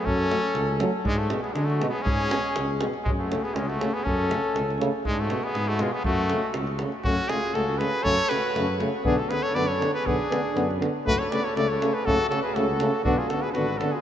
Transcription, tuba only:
\new Staff \with { instrumentName = "Tuba" } { \clef bass \time 2/4 \key fis \minor \tempo 4 = 120 fis,4 cis,4 | gis,4 d4 | gis,4 cis,4 | fis,4 cis,4 |
fis,4 cis,4 | gis,4 gis,4 | fis,4 cis,4 | fis,8 r8 cis,4 |
fis,8 r8 fis,4 | b,,8 r8 fis,4 | b,,8 r8 fis,4 | fis,,8 r8 cis,4 |
fis,,8 r8 cis,4 | b,,8 r8 gis,,4 | }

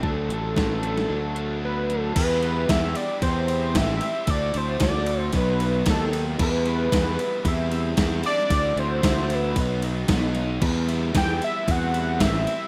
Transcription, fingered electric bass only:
\new Staff \with { instrumentName = "Fingered electric bass" } { \clef bass \time 4/4 \key e \minor \tempo 4 = 113 d,8 a,,4. d,2 | e,4 e,8 r8 e,4 a,,8 r8 | d,8 d,8 d,4 b,,4 dis,4 | e,4 e,8 r8 e,4 e,8 r8 |
d,8 d,8 d,4 b,,4 b,,4 | e,4 e,8 r8 e,4 a,,8 r8 | }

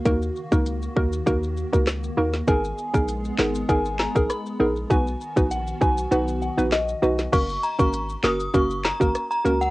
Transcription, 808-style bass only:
\new Staff \with { instrumentName = "808-style bass" } { \clef bass \time 4/4 \key fis \major \tempo 4 = 99 dis,8 r16 cis,8. dis,8 dis,8. cis,8. dis,8 | gis,,8 r16 ais,,8. gis,,8 gis,,8. ais,,16 r8 ais,,8 | b,,8 r16 ais,,8. b,,8 b,,8. ais,,8. b,,8 | fis,,8 r16 gis,,8. fis,,8 fis,,8. gis,,16 r8 cis,8 | }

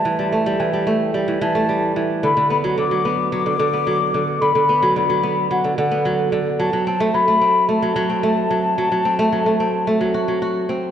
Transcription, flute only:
\new Staff \with { instrumentName = "Flute" } { \time 4/4 \key b \phrygian \tempo 4 = 110 a''8 a''8 g''4 r8 a''4 r8 | b''8 b''8 d'''4 d'''2 | b''4 b''4 fis''8 fis''4 r8 | a''8 a''8 b''4 a''2~ |
a''2. r4 | }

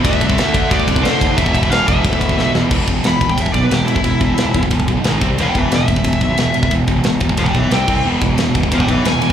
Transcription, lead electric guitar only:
\new Staff \with { instrumentName = "Lead electric guitar" } { \time 4/4 \tempo 4 = 180 e''2 d''4 c''4 | e''8 e''8 f''8 e''2 r8 | r4 \tuplet 3/2 { b''4 g''8 e''8 d''8 b'8 g'8 e'8 e'8~ } | e'4. r2 r8 |
<d'' g''>8 <b' e''>8 e''2. | r2 <d'' g''>8 <b' e''>8 g''4 | r2 <d'' g''>8 <b' e''>8 gis''4 | }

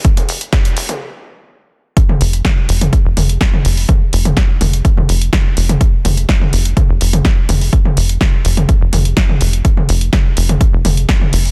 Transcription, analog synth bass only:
\new Staff \with { instrumentName = "Analog synth bass" } { \clef bass \time 4/4 \key c \phrygian \tempo 4 = 125 r8 f,,8 r8 f,,8 r2 | r8 f,,8 r8 f,,8 r16 f,,16 f,,8 r8 f,,8 | r8 f,,8 r8 f,,8 r16 f,,16 f,,8 r8 f,,8 | r8 f,,8 r8 f,,8 r16 f,,16 f,,8 r8 f,,8 |
r8 f,,8 r8 f,,8 r16 f,,16 f,,8 r8 f,,8 | r8 f,,8 r8 f,,8 r16 f,,16 f,,8 r8 f,,8 | }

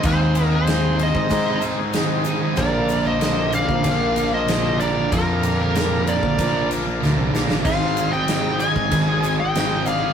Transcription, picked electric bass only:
\new Staff \with { instrumentName = "Picked electric bass" } { \clef bass \time 4/4 \key bes \mixolydian \tempo 4 = 95 ees,4.~ ees,16 aes,16 aes,2 | bes,,4.~ bes,,16 bes,,16 bes,,2 | f,4.~ f,16 bes,,16 bes,,4 d,16 c,16 bes,,16 aes,,16 | aes,,4.~ aes,,16 aes,,16 aes,,2 | }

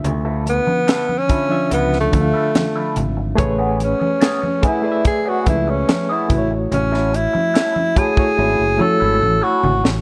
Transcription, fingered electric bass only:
\new Staff \with { instrumentName = "Fingered electric bass" } { \clef bass \time 4/4 \key a \major \tempo 4 = 72 d,8. r4 r16 cis,8 d,16 r8. gis,,8 | a,,8. r4. r16 cis,8 r8 a,,8 | a,,8. r4 r16 gis,,16 fis,,16 r16 gis,,16 a,,16 r16 gis,,16 a,,16 | }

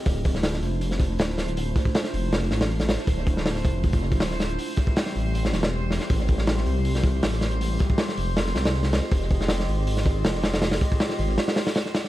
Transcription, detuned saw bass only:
\new Staff \with { instrumentName = "Detuned saw bass" } { \clef bass \time 4/4 \key d \minor \tempo 4 = 159 d,,4. f,,4. d,,4~ | d,,8 r4 f,,4 a,,4 r8 | d,,4. f,,4. d,,4 | r4. a,,4 e,,4 r8 |
a,,4. c,4. a,,4~ | a,,8 r4 f,,4 c,4 r8 | f,,4. aes,,4. f,,4~ | f,,8 r4 aes,,8 r2 | }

